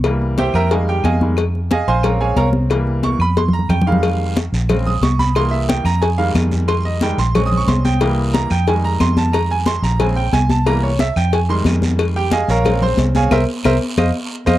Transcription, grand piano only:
<<
  \new Staff \with { instrumentName = "Grand piano" } { \time 4/4 \key f \minor \tempo 4 = 181 r4 <g' c'' e'' g''>8 <bes' e'' g'' bes''>8 <aes' ees'' f'' aes''>8 <g' g''>8 <aes' ees'' f'' aes''>8 r8 | r4 <aes' ees'' f'' aes''>8 <c'' f'' aes'' c'''>8 <bes' des'' f'' bes''>8 <aes' des'' f'' aes''>8 <bes' des'' f'' bes''>8 r8 | r4 des'''8 b''8 c'''8 bes''8 g''8 f''8~ | f''4 r4. ees'''8 des'''8 b''8 |
c'''8 e''8 g''8 bes''8 aes''8 f''8 r4 | c'''8 ees''8 g''8 c'''8 \tuplet 3/2 { des'''8 ees'''8 des'''8 } c'''8 g''8~ | g''8 r8 bes''8 g''8 aes''8 bes''8 c'''8 a''8 | bes''8 aes''8 c'''8 bes''8 aes''8 g''8 aes''8 a''8 |
bes''8 des''8 e''8 g''8 aes''8 c'''8 r4 | r8 <g' g''>8 <aes' ees'' f'' aes''>8 <bes' des'' f'' bes''>4 <c'' c'''>8 r8 <aes' des'' f'' aes''>8 | <bes' c'' e''>8 r8 <bes' c'' e''>8 r8 <c'' ees'' f''>8 r4 <c'' ees'' f''>8 | }
  \new Staff \with { instrumentName = "Grand piano" } { \clef bass \time 4/4 \key f \minor <e g bes>2 <ees g aes>4. <ees g aes>8 | r2 <aes c' des'>2 | <e g bes>4. r2 <ees g aes>8~ | <ees g aes>4 r4 <des aes c'>8 r4. |
<e g bes>4. r4 <ees g aes>4.~ | <ees g aes>4 <ees g aes>8 r8 <aes c' des'>2 | <e g bes>4. r8 <ees g aes>2~ | <ees g aes>2 <des aes c'>8 r4. |
<e g bes>8 r2 <ees g aes>4.~ | <ees g aes>2 <aes c' des'>2 | r1 | }
>>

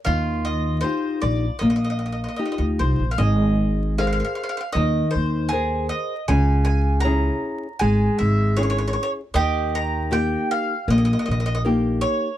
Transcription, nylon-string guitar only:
\new Staff \with { instrumentName = "Nylon-string guitar" } { \time 4/4 \key ees \major \tempo 4 = 78 ees4 <ees' f' g'>4 bes4 <ees' f' g'>4 | \key aes \major aes4 <aes' bes' c''>4 ees4 <aes' bes' c''>4 | des4 <des' fes' aes'>4 aes4 <des' fes' aes'>4 | ees4 <bes ees' g'>4 bes4 <bes ees' g'>4 | }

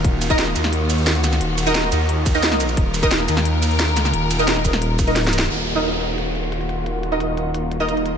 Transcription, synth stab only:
\new Staff \with { instrumentName = "Synth stab" } { \time 4/4 \key ees \minor \tempo 4 = 176 r8. <ees' bes' ees''>16 r2. | r8. <ees' bes' ees''>2 <ees' bes' ees''>4~ <ees' bes' ees''>16~ | <ees' bes' ees''>8. <ees' bes' ees''>16 r2. | r8. <ees' bes' ees''>2 <ees' bes' ees''>16 r4 |
r8. <ees' bes' ees''>16 r2. | r8. <ees' bes' ees''>2 <ees' bes' ees''>4~ <ees' bes' ees''>16 | }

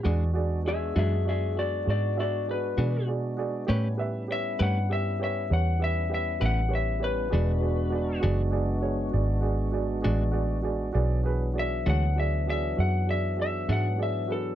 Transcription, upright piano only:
\new Staff \with { instrumentName = "Upright piano" } { \time 12/8 \key e \mixolydian \tempo 4. = 66 <fis' gis' d''>8 <fis' gis' d''>8 <fis' gis' d''>8 <fis' gis' e''>8 <fis' gis' d''>8 <fis' gis' d''>8 <fis' gis' d''>8 <fis' gis' e''>8 <fis' gis' d''>8 <fis' gis' d''>8 <fis' gis' d''>8 <fis' gis' d''>8 | <g' b' cis''>8 <g' b' e''>8 <g' b' cis''>8 <g' b' cis''>8 <g' b' e''>8 <g' b' cis''>8 <g' b' cis''>8 <g' b' e''>8 <g' b' e''>8 <g' b' e''>8 <g' b' cis''>8 <g' b' cis''>8 | <fis' gis' d''>8 <fis' gis' d''>8 <fis' gis' d''>8 <fis' gis' d''>8 <fis' gis' d''>8 <fis' gis' cis''>8 <fis' gis' d''>8 <fis' gis' d''>8 <fis' gis' d''>8 <fis' gis' d''>8 <fis' gis' d''>8 <fis' gis' d''>8 | <fis' gis' d''>8 <fis' gis' b'>8 <fis' gis' d''>8 <fis' gis' cis''>8 <fis' gis' d''>8 <fis' gis' d''>8 <fis' gis' e''>8 <fis' gis' d''>8 <fis' gis' d''>8 <fis' gis' e''>8 <fis' gis' d''>8 <fis' gis' b'>8 | }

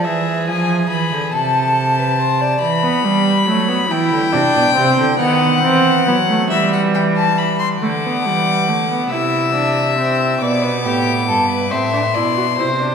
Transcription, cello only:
\new Staff \with { instrumentName = "Cello" } { \clef bass \time 6/8 \key e \phrygian \tempo 4. = 46 e8 f8 e16 d16 c4. | e8 g8 fis8 e16 d16 c16 b,16 c16 d16 | dis8 e8 fis8 e4. | d8 e8 d8 c4. |
b,8 a,8 g,8 a,8 b,8 c8 | }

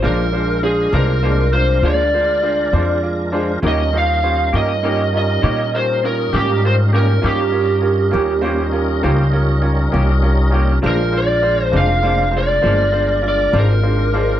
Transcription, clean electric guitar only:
\new Staff \with { instrumentName = "Clean electric guitar" } { \time 12/8 \key bes \mixolydian \tempo 4. = 67 <bes, f aes d'>8 r4 <f aes d'>8 <bes, f aes d'>8 r8 <bes, f aes d'>8 r4 <f aes d'>8 r8 <f aes d'>8 | <ees bes des' g'>8 r4 <bes des' g'>8 <ees bes des' g'>8 r8 <ees bes des' g'>8 r4 <bes des' g'>8 r8 <bes des' g'>8 | <ees bes des' g'>8 r4 <bes des' g'>8 <ees bes des' g'>8 r8 <ees bes des' g'>8 r4 <bes des' g'>8 r8 <bes des' g'>8 | <bes, f aes d'>8 r4 <f aes d'>8 <bes, f aes d'>8 r8 <bes, f aes d'>8 r4 <f aes d'>8 r8 <f aes d'>8 | }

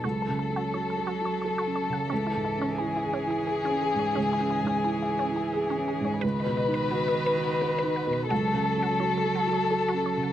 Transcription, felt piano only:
\new Staff \with { instrumentName = "Felt piano" } { \time 3/4 \key cis \minor \tempo 4 = 87 \tuplet 3/2 { cis,8 cis8 cis'8 fis'8 a'8 fis'8 a'8 cis'8 cis8 } | \tuplet 3/2 { cis,8 gis,8 cis'8 e'8 gis'8 e'8 gis'8 cis'8 gis,8 } | \tuplet 3/2 { cis,8 cis'8 gis,8 e'8 gis'8 e'8 gis'8 cis'8 gis,8 } | \tuplet 3/2 { cis,8 b,8 dis'8 fis'8 b'8 fis'8 b'8 dis'8 b,8 } |
\tuplet 3/2 { cis,8 cis8 cis'8 fis'8 a'8 fis'8 a'8 cis'8 cis8 } | }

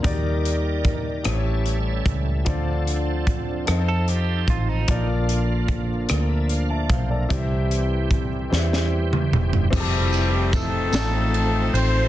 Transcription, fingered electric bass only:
\new Staff \with { instrumentName = "Fingered electric bass" } { \clef bass \time 6/8 \key f \major \tempo 4. = 50 ees,4. a,,4 cis,8 | d,4. f,4 a,,8 | bes,,4. d,4 b,,8 | c,4. e,4 e,,8 |
f,,4. a,,4 a,,8 | }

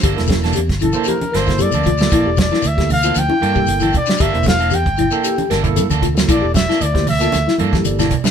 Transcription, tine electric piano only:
\new Staff \with { instrumentName = "Tine electric piano" } { \time 4/4 \key g \dorian \tempo 4 = 115 << { r1 | r1 | r1 | r2. d''4 | } \\ { r16 <bes e' a'>8. r8. <bes e' c''>8 r8 <bes e' a'>8 r8 <bes e' a'>16~ | <bes e' a'>8 r8. <bes e' a'>16 r16 <bes e' c''>16 r8 <bes e' a'>8. r8. | r16 <bes e' c''>8. r8. <bes e' a'>8 r8 <bes e' a'>8 r8 <bes e' a'>16~ | <bes e' a'>8 r8. <bes e' c''>16 r16 <bes e' a'>16 r8 <bes e' a'>8. r8. | } >> }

